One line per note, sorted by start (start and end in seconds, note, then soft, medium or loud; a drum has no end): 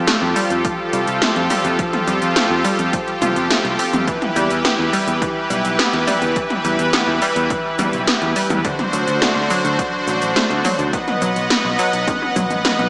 0.00 4.04 F3 medium
0.00 4.04 F4 medium
0.00 8.61 G4 medium
0.00 4.04 A4 loud
0.07 0.24 A3 loud
0.07 snare loud
0.07 closed hi-hat medium
0.07 cabasa soft
0.22 0.33 F2 medium
0.36 0.61 G3 loud
0.36 open hi-hat medium
0.36 cabasa medium
0.50 0.62 F2 medium
0.50 closed hi-hat medium
0.50 cabasa soft
0.65 0.90 F3 medium
0.65 kick loud
0.65 closed hi-hat medium
0.65 cabasa soft
0.93 1.04 C2 medium
0.93 1.18 G3 medium
0.93 closed hi-hat medium
0.93 cabasa medium
1.07 1.19 C2 medium
1.07 closed hi-hat medium
1.07 cabasa soft
1.22 1.47 A3 loud
1.22 snare loud
1.22 closed hi-hat medium
1.22 cabasa soft
1.36 1.47 F2 medium
1.36 closed hi-hat soft
1.50 1.67 G3 loud
1.50 open hi-hat medium
1.50 mid tom medium
1.50 cabasa medium
1.65 1.76 F2 medium
1.65 closed hi-hat medium
1.65 cabasa soft
1.79 2.04 F3 medium
1.79 kick loud
1.79 closed hi-hat medium
1.79 cabasa soft
1.93 closed hi-hat soft
1.93 mid tom medium
2.07 2.19 F2 medium
2.07 2.24 G3 loud
2.07 closed hi-hat medium
2.07 cabasa medium
2.22 2.33 F2 medium
2.22 closed hi-hat medium
2.22 cabasa soft
2.36 2.53 A3 medium
2.36 snare loud
2.36 closed hi-hat medium
2.36 cabasa soft
2.50 2.62 F2 medium
2.65 2.81 G3 loud
2.65 open hi-hat medium
2.65 cabasa medium
2.79 2.90 F2 medium
2.79 closed hi-hat medium
2.79 cabasa soft
2.93 3.10 F3 loud
2.93 kick loud
2.93 closed hi-hat medium
2.93 cabasa soft
3.08 closed hi-hat soft
3.22 3.33 C2 medium
3.22 3.39 F4 loud
3.22 closed hi-hat medium
3.22 mid tom loud
3.22 cabasa medium
3.36 3.47 F2 medium
3.36 closed hi-hat medium
3.36 cabasa soft
3.50 3.60 A3 medium
3.50 snare loud
3.50 closed hi-hat medium
3.50 cabasa soft
3.65 3.76 C2 medium
3.65 closed hi-hat soft
3.79 3.96 C4 medium
3.79 open hi-hat medium
3.79 cabasa medium
3.93 4.04 F2 medium
3.93 closed hi-hat medium
3.93 mid tom loud
3.93 cabasa soft
4.08 4.33 E3 medium
4.08 8.61 E3 medium
4.08 8.61 E4 medium
4.08 8.61 B4 loud
4.08 kick loud
4.08 closed hi-hat medium
4.08 cabasa soft
4.22 closed hi-hat soft
4.22 mid tom loud
4.36 4.47 E2 medium
4.36 4.53 G3 loud
4.36 closed hi-hat medium
4.36 cabasa medium
4.50 4.62 E2 medium
4.50 closed hi-hat medium
4.50 cabasa soft
4.65 4.82 B3 medium
4.65 snare loud
4.65 closed hi-hat medium
4.65 cabasa soft
4.79 4.90 E2 medium
4.93 5.10 G3 loud
4.93 open hi-hat medium
4.93 cabasa medium
5.07 5.19 E2 medium
5.07 closed hi-hat medium
5.07 cabasa soft
5.22 5.39 E3 loud
5.22 kick loud
5.22 closed hi-hat medium
5.22 cabasa soft
5.50 5.62 B1 medium
5.50 5.76 G3 medium
5.50 closed hi-hat medium
5.50 cabasa medium
5.65 5.76 B1 medium
5.65 closed hi-hat medium
5.65 cabasa soft
5.79 5.96 B3 loud
5.79 snare loud
5.79 closed hi-hat medium
5.79 cabasa soft
5.93 6.04 E2 medium
5.93 closed hi-hat soft
6.08 6.33 G3 loud
6.08 open hi-hat medium
6.08 mid tom loud
6.08 cabasa medium
6.22 6.33 E2 medium
6.22 closed hi-hat medium
6.22 cabasa soft
6.36 6.61 E3 medium
6.36 kick loud
6.36 closed hi-hat medium
6.36 cabasa soft
6.50 closed hi-hat soft
6.50 mid tom loud
6.65 6.76 E2 medium
6.65 6.90 G3 medium
6.65 closed hi-hat medium
6.65 cabasa medium
6.79 6.90 E2 medium
6.79 closed hi-hat soft
6.79 cabasa soft
6.93 7.18 B3 loud
6.93 snare loud
6.93 closed hi-hat medium
6.93 cabasa soft
7.08 7.19 E2 medium
7.22 7.39 G3 loud
7.22 open hi-hat medium
7.22 cabasa medium
7.36 7.47 E2 medium
7.36 closed hi-hat medium
7.36 cabasa soft
7.50 7.76 E3 medium
7.50 kick loud
7.50 closed hi-hat medium
7.50 cabasa soft
7.79 7.90 E2 medium
7.79 7.96 G3 loud
7.79 closed hi-hat medium
7.79 mid tom loud
7.79 cabasa medium
7.93 8.04 B1 medium
7.93 closed hi-hat soft
7.93 cabasa soft
8.07 8.24 B3 medium
8.07 snare loud
8.07 closed hi-hat medium
8.07 cabasa soft
8.22 8.33 E2 medium
8.22 closed hi-hat soft
8.36 8.53 G3 loud
8.36 open hi-hat medium
8.36 cabasa medium
8.50 8.62 E2 medium
8.50 closed hi-hat medium
8.50 mid tom loud
8.50 cabasa soft
8.65 10.91 D3 medium
8.65 8.81 D3 loud
8.65 10.91 D4 medium
8.65 10.91 F#4 medium
8.65 10.91 C5 medium
8.65 kick loud
8.65 closed hi-hat medium
8.65 cabasa soft
8.79 closed hi-hat soft
8.79 mid tom medium
8.93 9.04 D2 medium
8.93 9.18 F#3 medium
8.93 closed hi-hat medium
8.93 cabasa medium
9.07 9.19 D2 medium
9.07 closed hi-hat soft
9.07 cabasa soft
9.22 9.39 A3 loud
9.22 snare loud
9.22 closed hi-hat medium
9.22 cabasa soft
9.36 9.47 D2 medium
9.50 9.76 F#3 loud
9.50 open hi-hat medium
9.50 cabasa medium
9.65 9.76 D2 medium
9.65 closed hi-hat medium
9.65 cabasa soft
9.79 10.04 D3 medium
9.79 kick loud
9.79 closed hi-hat medium
9.79 cabasa soft
10.07 10.19 A1 medium
10.07 10.33 F#3 medium
10.07 closed hi-hat medium
10.07 cabasa medium
10.22 10.33 A1 medium
10.22 closed hi-hat medium
10.22 cabasa soft
10.36 10.61 A3 loud
10.36 snare loud
10.36 closed hi-hat medium
10.36 cabasa soft
10.50 10.62 D2 medium
10.50 closed hi-hat soft
10.65 10.81 F#3 loud
10.65 open hi-hat medium
10.65 mid tom loud
10.65 cabasa medium
10.79 10.90 D2 medium
10.79 closed hi-hat medium
10.79 cabasa soft
10.93 11.18 D#3 medium
10.93 12.89 B3 medium
10.93 12.89 B4 medium
10.93 12.89 D#5 medium
10.93 12.89 F#5 loud
10.93 kick loud
10.93 closed hi-hat medium
10.93 cabasa soft
11.08 closed hi-hat soft
11.08 mid tom medium
11.22 11.33 B1 medium
11.22 11.39 F#3 loud
11.22 closed hi-hat medium
11.22 cabasa medium
11.36 11.47 B1 medium
11.36 closed hi-hat medium
11.36 cabasa soft
11.50 11.67 B3 medium
11.50 snare loud
11.50 closed hi-hat medium
11.50 cabasa soft
11.65 11.76 B1 medium
11.79 11.96 F#3 loud
11.79 open hi-hat medium
11.79 cabasa medium
11.93 12.04 B1 medium
11.93 closed hi-hat medium
11.93 cabasa soft
12.08 12.24 D#3 loud
12.08 kick loud
12.08 closed hi-hat medium
12.08 high tom medium
12.08 cabasa soft
12.22 high tom medium
12.36 12.47 B1 medium
12.36 12.46 F#3 loud
12.36 kick medium
12.36 closed hi-hat medium
12.36 mid tom medium
12.36 cabasa medium
12.50 12.62 A1 medium
12.50 closed hi-hat medium
12.50 mid tom medium
12.50 cabasa soft
12.65 12.81 B3 medium
12.65 snare loud
12.65 closed hi-hat medium
12.65 mid tom medium
12.65 cabasa soft
12.79 12.89 B1 medium
12.79 closed hi-hat soft
12.79 mid tom medium